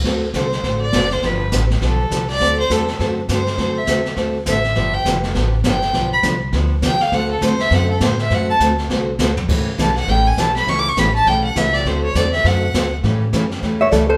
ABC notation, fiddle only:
X:1
M:4/4
L:1/8
Q:"Swing" 1/4=203
K:Dmix
V:1 name="Fiddle"
z2 c3 d2 c | B2 z2 A3 d- | d c A2 z2 c2- | c e z4 e2- |
e g z4 g2- | g b z4 g =f | f A c e f A c e | f a z6 |
z2 a f g ^g a b | (3^c' d' c' b a g f e d | c ^c d e f3 z | z8 |]